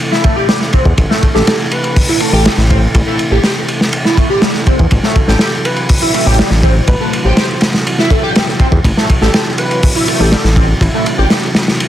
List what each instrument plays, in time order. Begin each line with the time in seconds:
Already playing: tonewheel organ C3 E3 A3
0.11 analog synth lead E4, snare
0.24 analog synth lead A3, kick, ride
0.36 analog synth lead G4
0.48 analog synth lead G3, snare, ride
0.61 snare
0.73 analog synth lead C4, kick, ride
0.85 analog synth bass E2, kick
0.98 analog synth bass A1, kick, ride
1.10 analog synth lead A3, snare
1.23 kick, ride
1.34 analog synth bass A1, analog synth lead G4, digital synth lead A4, snare
1.47 analog synth lead G4, digital synth lead A4, snare, ride
1.71 digital synth lead B4, ride
1.84 ride
1.96 kick, open hi-hat
2.08 analog synth lead E4, ride
2.20 analog synth lead A3, ride
2.33 analog synth bass A1, analog synth lead G4, digital synth lead A4
2.45 analog synth lead G3, digital synth lead A4, snare, ride
2.57 analog synth bass A1, snare
2.70 analog synth lead C4, kick, ride
2.94 analog synth bass A1, digital synth lead E4, kick, ride
3.07 analog synth lead A3, digital synth lead E4
3.19 ride
3.31 analog synth bass A1, analog synth lead G4
3.44 analog synth lead G4, snare, ride
3.68 ride
3.81 snare
3.93 ride
4.05 analog synth lead E4, snare
4.17 analog synth lead A3, kick, ride
4.30 analog synth lead G4
4.42 analog synth lead G3, snare, ride
4.54 snare
4.67 analog synth lead C4, kick, ride
4.79 analog synth bass E2, kick
4.91 analog synth bass A1, tonewheel organ F#3, kick, ride
5.03 analog synth lead A3, snare
5.15 kick, ride
5.28 analog synth bass A1, analog synth lead G4, digital synth lead A4, snare
5.39 analog synth lead G4, digital synth lead A4, snare, ride
5.65 digital synth lead B4, ride
5.76 ride
5.89 kick, open hi-hat
6.01 analog synth lead E4, ride
6.14 analog synth lead A3, ride
6.26 analog synth bass A1, analog synth lead G4
6.38 analog synth lead G3, snare, ride
6.50 analog synth bass A1, snare
6.63 analog synth lead C4, kick, ride
6.87 analog synth bass A1, digital synth lead B4, kick, ride
7.00 analog synth lead A3, digital synth lead B4
7.13 ride
7.25 analog synth bass A1, analog synth lead G4, digital synth lead C5
7.37 analog synth lead G4, digital synth lead C5, snare, ride
7.61 snare, ride
7.74 snare
7.87 ride
7.98 analog synth lead E4, snare
8.10 analog synth lead A3, kick, ride
8.23 analog synth lead G4
8.35 analog synth lead G3, snare, ride
8.48 snare
8.60 analog synth lead C4, kick, ride
8.72 analog synth bass E2, kick
8.84 analog synth bass A1, kick, ride
8.97 analog synth lead A3, snare
9.10 kick, ride
9.21 analog synth bass A1, analog synth lead G4, digital synth lead A4, snare
9.34 analog synth lead G4, digital synth lead A4, snare, ride
9.58 digital synth lead B4, ride
9.71 ride
9.83 kick, open hi-hat
9.95 analog synth lead E4, ride
10.07 analog synth lead A3, ride
10.20 analog synth bass A1, analog synth lead G4, digital synth lead A4
10.32 analog synth lead G3, digital synth lead A4, snare, ride
10.44 analog synth bass A1, snare
10.56 analog synth lead C4, kick, ride
10.81 analog synth bass A1, digital synth lead E4, kick, ride
10.94 analog synth lead A3, digital synth lead E4
11.06 ride
11.18 analog synth bass A1, analog synth lead G4
11.30 analog synth lead G4, snare, ride
11.55 snare, ride
11.68 snare
11.80 ride